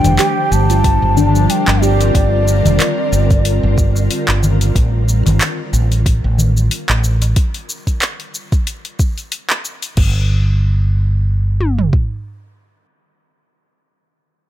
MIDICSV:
0, 0, Header, 1, 7, 480
1, 0, Start_track
1, 0, Key_signature, -2, "minor"
1, 0, Tempo, 652174
1, 1581, Time_signature, 4, 2, 24, 8
1, 10669, End_track
2, 0, Start_track
2, 0, Title_t, "Bansuri"
2, 0, Program_c, 0, 73
2, 0, Note_on_c, 0, 79, 121
2, 388, Note_on_c, 0, 81, 119
2, 399, Note_off_c, 0, 79, 0
2, 1105, Note_on_c, 0, 79, 99
2, 1116, Note_off_c, 0, 81, 0
2, 1344, Note_on_c, 0, 74, 108
2, 1355, Note_off_c, 0, 79, 0
2, 3262, Note_off_c, 0, 74, 0
2, 10669, End_track
3, 0, Start_track
3, 0, Title_t, "Ambient pad"
3, 0, Program_c, 1, 92
3, 0, Note_on_c, 1, 50, 79
3, 0, Note_on_c, 1, 55, 72
3, 0, Note_on_c, 1, 62, 67
3, 0, Note_on_c, 1, 67, 70
3, 0, Note_on_c, 1, 72, 85
3, 277, Note_off_c, 1, 67, 0
3, 295, Note_off_c, 1, 72, 0
3, 338, Note_on_c, 1, 65, 80
3, 639, Note_off_c, 1, 62, 0
3, 671, Note_on_c, 1, 60, 79
3, 714, Note_on_c, 1, 70, 79
3, 3502, Note_off_c, 1, 50, 0
3, 3502, Note_off_c, 1, 55, 0
3, 3503, Note_off_c, 1, 65, 0
3, 3504, Note_off_c, 1, 70, 0
3, 3505, Note_off_c, 1, 60, 0
3, 10669, End_track
4, 0, Start_track
4, 0, Title_t, "Handpan"
4, 0, Program_c, 2, 114
4, 0, Note_on_c, 2, 53, 70
4, 132, Note_off_c, 2, 53, 0
4, 143, Note_on_c, 2, 67, 101
4, 268, Note_off_c, 2, 67, 0
4, 381, Note_on_c, 2, 55, 75
4, 501, Note_off_c, 2, 55, 0
4, 515, Note_on_c, 2, 65, 74
4, 851, Note_off_c, 2, 65, 0
4, 862, Note_on_c, 2, 62, 106
4, 937, Note_off_c, 2, 62, 0
4, 992, Note_on_c, 2, 53, 77
4, 1329, Note_off_c, 2, 53, 0
4, 1342, Note_on_c, 2, 67, 98
4, 1468, Note_off_c, 2, 67, 0
4, 10669, End_track
5, 0, Start_track
5, 0, Title_t, "Fretless electric bass"
5, 0, Program_c, 3, 35
5, 33, Note_on_c, 3, 29, 87
5, 124, Note_off_c, 3, 29, 0
5, 379, Note_on_c, 3, 31, 93
5, 720, Note_off_c, 3, 31, 0
5, 752, Note_on_c, 3, 31, 93
5, 1074, Note_off_c, 3, 31, 0
5, 1233, Note_on_c, 3, 31, 85
5, 1554, Note_off_c, 3, 31, 0
5, 1580, Note_on_c, 3, 31, 102
5, 1921, Note_off_c, 3, 31, 0
5, 1952, Note_on_c, 3, 29, 90
5, 2043, Note_off_c, 3, 29, 0
5, 2300, Note_on_c, 3, 31, 95
5, 2640, Note_off_c, 3, 31, 0
5, 2674, Note_on_c, 3, 31, 95
5, 2994, Note_off_c, 3, 31, 0
5, 3153, Note_on_c, 3, 31, 84
5, 3474, Note_off_c, 3, 31, 0
5, 3500, Note_on_c, 3, 33, 96
5, 3840, Note_off_c, 3, 33, 0
5, 3874, Note_on_c, 3, 31, 89
5, 3965, Note_off_c, 3, 31, 0
5, 4219, Note_on_c, 3, 33, 93
5, 4560, Note_off_c, 3, 33, 0
5, 4594, Note_on_c, 3, 33, 94
5, 4914, Note_off_c, 3, 33, 0
5, 5074, Note_on_c, 3, 33, 81
5, 5394, Note_off_c, 3, 33, 0
5, 7340, Note_on_c, 3, 31, 95
5, 8751, Note_off_c, 3, 31, 0
5, 10669, End_track
6, 0, Start_track
6, 0, Title_t, "Darbuka"
6, 30, Note_on_c, 9, 64, 94
6, 34, Note_on_c, 9, 62, 65
6, 103, Note_off_c, 9, 64, 0
6, 107, Note_off_c, 9, 62, 0
6, 275, Note_on_c, 9, 63, 30
6, 349, Note_off_c, 9, 63, 0
6, 860, Note_on_c, 9, 64, 89
6, 934, Note_off_c, 9, 64, 0
6, 1233, Note_on_c, 9, 63, 75
6, 1306, Note_off_c, 9, 63, 0
6, 1481, Note_on_c, 9, 62, 59
6, 1554, Note_off_c, 9, 62, 0
6, 1955, Note_on_c, 9, 64, 96
6, 1956, Note_on_c, 9, 62, 70
6, 2028, Note_off_c, 9, 64, 0
6, 2029, Note_off_c, 9, 62, 0
6, 2194, Note_on_c, 9, 63, 35
6, 2268, Note_off_c, 9, 63, 0
6, 2910, Note_on_c, 9, 62, 52
6, 2918, Note_on_c, 9, 63, 35
6, 2984, Note_off_c, 9, 62, 0
6, 2992, Note_off_c, 9, 63, 0
6, 3156, Note_on_c, 9, 63, 76
6, 3229, Note_off_c, 9, 63, 0
6, 3264, Note_on_c, 9, 64, 93
6, 3338, Note_off_c, 9, 64, 0
6, 3869, Note_on_c, 9, 62, 65
6, 3877, Note_on_c, 9, 64, 96
6, 3943, Note_off_c, 9, 62, 0
6, 3950, Note_off_c, 9, 64, 0
6, 4116, Note_on_c, 9, 63, 31
6, 4190, Note_off_c, 9, 63, 0
6, 4697, Note_on_c, 9, 64, 89
6, 4771, Note_off_c, 9, 64, 0
6, 5078, Note_on_c, 9, 63, 71
6, 5152, Note_off_c, 9, 63, 0
6, 5314, Note_on_c, 9, 62, 61
6, 5388, Note_off_c, 9, 62, 0
6, 10669, End_track
7, 0, Start_track
7, 0, Title_t, "Drums"
7, 33, Note_on_c, 9, 46, 33
7, 36, Note_on_c, 9, 82, 52
7, 106, Note_off_c, 9, 46, 0
7, 109, Note_off_c, 9, 82, 0
7, 139, Note_on_c, 9, 39, 74
7, 139, Note_on_c, 9, 46, 68
7, 142, Note_on_c, 9, 82, 35
7, 213, Note_off_c, 9, 39, 0
7, 213, Note_off_c, 9, 46, 0
7, 216, Note_off_c, 9, 82, 0
7, 384, Note_on_c, 9, 82, 73
7, 458, Note_off_c, 9, 82, 0
7, 514, Note_on_c, 9, 46, 29
7, 517, Note_on_c, 9, 82, 44
7, 587, Note_off_c, 9, 46, 0
7, 590, Note_off_c, 9, 82, 0
7, 620, Note_on_c, 9, 36, 102
7, 621, Note_on_c, 9, 46, 68
7, 624, Note_on_c, 9, 82, 34
7, 694, Note_off_c, 9, 36, 0
7, 694, Note_off_c, 9, 46, 0
7, 698, Note_off_c, 9, 82, 0
7, 864, Note_on_c, 9, 82, 76
7, 938, Note_off_c, 9, 82, 0
7, 997, Note_on_c, 9, 82, 47
7, 1070, Note_off_c, 9, 82, 0
7, 1102, Note_on_c, 9, 46, 69
7, 1105, Note_on_c, 9, 82, 35
7, 1176, Note_off_c, 9, 46, 0
7, 1179, Note_off_c, 9, 82, 0
7, 1235, Note_on_c, 9, 39, 72
7, 1235, Note_on_c, 9, 46, 44
7, 1309, Note_off_c, 9, 39, 0
7, 1309, Note_off_c, 9, 46, 0
7, 1346, Note_on_c, 9, 82, 74
7, 1420, Note_off_c, 9, 82, 0
7, 1476, Note_on_c, 9, 46, 44
7, 1479, Note_on_c, 9, 82, 43
7, 1550, Note_off_c, 9, 46, 0
7, 1553, Note_off_c, 9, 82, 0
7, 1580, Note_on_c, 9, 36, 112
7, 1582, Note_on_c, 9, 46, 70
7, 1585, Note_on_c, 9, 82, 31
7, 1654, Note_off_c, 9, 36, 0
7, 1656, Note_off_c, 9, 46, 0
7, 1659, Note_off_c, 9, 82, 0
7, 1824, Note_on_c, 9, 82, 80
7, 1898, Note_off_c, 9, 82, 0
7, 1955, Note_on_c, 9, 46, 33
7, 1958, Note_on_c, 9, 82, 45
7, 2029, Note_off_c, 9, 46, 0
7, 2032, Note_off_c, 9, 82, 0
7, 2062, Note_on_c, 9, 39, 76
7, 2062, Note_on_c, 9, 46, 67
7, 2065, Note_on_c, 9, 82, 33
7, 2136, Note_off_c, 9, 39, 0
7, 2136, Note_off_c, 9, 46, 0
7, 2139, Note_off_c, 9, 82, 0
7, 2304, Note_on_c, 9, 82, 70
7, 2377, Note_off_c, 9, 82, 0
7, 2433, Note_on_c, 9, 36, 103
7, 2433, Note_on_c, 9, 46, 30
7, 2436, Note_on_c, 9, 82, 42
7, 2506, Note_off_c, 9, 46, 0
7, 2507, Note_off_c, 9, 36, 0
7, 2509, Note_off_c, 9, 82, 0
7, 2540, Note_on_c, 9, 46, 69
7, 2543, Note_on_c, 9, 82, 35
7, 2613, Note_off_c, 9, 46, 0
7, 2616, Note_off_c, 9, 82, 0
7, 2780, Note_on_c, 9, 36, 100
7, 2783, Note_on_c, 9, 82, 74
7, 2853, Note_off_c, 9, 36, 0
7, 2857, Note_off_c, 9, 82, 0
7, 2916, Note_on_c, 9, 82, 44
7, 2990, Note_off_c, 9, 82, 0
7, 3022, Note_on_c, 9, 46, 67
7, 3025, Note_on_c, 9, 82, 34
7, 3095, Note_off_c, 9, 46, 0
7, 3098, Note_off_c, 9, 82, 0
7, 3153, Note_on_c, 9, 39, 72
7, 3153, Note_on_c, 9, 46, 44
7, 3227, Note_off_c, 9, 39, 0
7, 3227, Note_off_c, 9, 46, 0
7, 3263, Note_on_c, 9, 82, 73
7, 3337, Note_off_c, 9, 82, 0
7, 3394, Note_on_c, 9, 46, 48
7, 3397, Note_on_c, 9, 82, 46
7, 3467, Note_off_c, 9, 46, 0
7, 3470, Note_off_c, 9, 82, 0
7, 3500, Note_on_c, 9, 36, 116
7, 3502, Note_on_c, 9, 46, 66
7, 3505, Note_on_c, 9, 82, 33
7, 3573, Note_off_c, 9, 36, 0
7, 3576, Note_off_c, 9, 46, 0
7, 3579, Note_off_c, 9, 82, 0
7, 3744, Note_on_c, 9, 82, 80
7, 3818, Note_off_c, 9, 82, 0
7, 3875, Note_on_c, 9, 46, 36
7, 3878, Note_on_c, 9, 82, 46
7, 3948, Note_off_c, 9, 46, 0
7, 3952, Note_off_c, 9, 82, 0
7, 3981, Note_on_c, 9, 39, 78
7, 3981, Note_on_c, 9, 46, 74
7, 3984, Note_on_c, 9, 82, 34
7, 4054, Note_off_c, 9, 39, 0
7, 4054, Note_off_c, 9, 46, 0
7, 4057, Note_off_c, 9, 82, 0
7, 4223, Note_on_c, 9, 82, 73
7, 4296, Note_off_c, 9, 82, 0
7, 4355, Note_on_c, 9, 46, 32
7, 4358, Note_on_c, 9, 82, 40
7, 4428, Note_off_c, 9, 46, 0
7, 4431, Note_off_c, 9, 82, 0
7, 4459, Note_on_c, 9, 36, 105
7, 4462, Note_on_c, 9, 46, 76
7, 4465, Note_on_c, 9, 82, 33
7, 4533, Note_off_c, 9, 36, 0
7, 4535, Note_off_c, 9, 46, 0
7, 4538, Note_off_c, 9, 82, 0
7, 4705, Note_on_c, 9, 82, 81
7, 4779, Note_off_c, 9, 82, 0
7, 4837, Note_on_c, 9, 82, 45
7, 4910, Note_off_c, 9, 82, 0
7, 4940, Note_on_c, 9, 46, 70
7, 4943, Note_on_c, 9, 82, 34
7, 5014, Note_off_c, 9, 46, 0
7, 5017, Note_off_c, 9, 82, 0
7, 5074, Note_on_c, 9, 39, 77
7, 5074, Note_on_c, 9, 46, 46
7, 5148, Note_off_c, 9, 39, 0
7, 5148, Note_off_c, 9, 46, 0
7, 5182, Note_on_c, 9, 82, 72
7, 5255, Note_off_c, 9, 82, 0
7, 5312, Note_on_c, 9, 46, 49
7, 5315, Note_on_c, 9, 82, 47
7, 5386, Note_off_c, 9, 46, 0
7, 5389, Note_off_c, 9, 82, 0
7, 5419, Note_on_c, 9, 46, 75
7, 5420, Note_on_c, 9, 36, 121
7, 5422, Note_on_c, 9, 82, 33
7, 5492, Note_off_c, 9, 46, 0
7, 5494, Note_off_c, 9, 36, 0
7, 5495, Note_off_c, 9, 82, 0
7, 5552, Note_on_c, 9, 46, 35
7, 5626, Note_off_c, 9, 46, 0
7, 5664, Note_on_c, 9, 82, 75
7, 5738, Note_off_c, 9, 82, 0
7, 5793, Note_on_c, 9, 36, 58
7, 5794, Note_on_c, 9, 46, 36
7, 5797, Note_on_c, 9, 82, 47
7, 5866, Note_off_c, 9, 36, 0
7, 5867, Note_off_c, 9, 46, 0
7, 5870, Note_off_c, 9, 82, 0
7, 5901, Note_on_c, 9, 39, 84
7, 5901, Note_on_c, 9, 46, 69
7, 5904, Note_on_c, 9, 82, 34
7, 5975, Note_off_c, 9, 39, 0
7, 5975, Note_off_c, 9, 46, 0
7, 5978, Note_off_c, 9, 82, 0
7, 6033, Note_on_c, 9, 46, 33
7, 6107, Note_off_c, 9, 46, 0
7, 6143, Note_on_c, 9, 82, 74
7, 6216, Note_off_c, 9, 82, 0
7, 6273, Note_on_c, 9, 36, 105
7, 6273, Note_on_c, 9, 46, 30
7, 6276, Note_on_c, 9, 82, 42
7, 6346, Note_off_c, 9, 36, 0
7, 6346, Note_off_c, 9, 46, 0
7, 6349, Note_off_c, 9, 82, 0
7, 6381, Note_on_c, 9, 46, 74
7, 6384, Note_on_c, 9, 82, 36
7, 6454, Note_off_c, 9, 46, 0
7, 6458, Note_off_c, 9, 82, 0
7, 6513, Note_on_c, 9, 46, 33
7, 6587, Note_off_c, 9, 46, 0
7, 6620, Note_on_c, 9, 36, 102
7, 6622, Note_on_c, 9, 82, 78
7, 6693, Note_off_c, 9, 36, 0
7, 6695, Note_off_c, 9, 82, 0
7, 6753, Note_on_c, 9, 46, 32
7, 6756, Note_on_c, 9, 82, 45
7, 6827, Note_off_c, 9, 46, 0
7, 6830, Note_off_c, 9, 82, 0
7, 6858, Note_on_c, 9, 46, 75
7, 6861, Note_on_c, 9, 82, 32
7, 6932, Note_off_c, 9, 46, 0
7, 6935, Note_off_c, 9, 82, 0
7, 6992, Note_on_c, 9, 39, 75
7, 6992, Note_on_c, 9, 46, 49
7, 7066, Note_off_c, 9, 39, 0
7, 7066, Note_off_c, 9, 46, 0
7, 7102, Note_on_c, 9, 82, 73
7, 7175, Note_off_c, 9, 82, 0
7, 7231, Note_on_c, 9, 46, 49
7, 7234, Note_on_c, 9, 82, 45
7, 7305, Note_off_c, 9, 46, 0
7, 7308, Note_off_c, 9, 82, 0
7, 7338, Note_on_c, 9, 49, 84
7, 7340, Note_on_c, 9, 36, 114
7, 7411, Note_off_c, 9, 49, 0
7, 7414, Note_off_c, 9, 36, 0
7, 8542, Note_on_c, 9, 47, 55
7, 8615, Note_off_c, 9, 47, 0
7, 8674, Note_on_c, 9, 43, 75
7, 8748, Note_off_c, 9, 43, 0
7, 8781, Note_on_c, 9, 36, 96
7, 8854, Note_off_c, 9, 36, 0
7, 10669, End_track
0, 0, End_of_file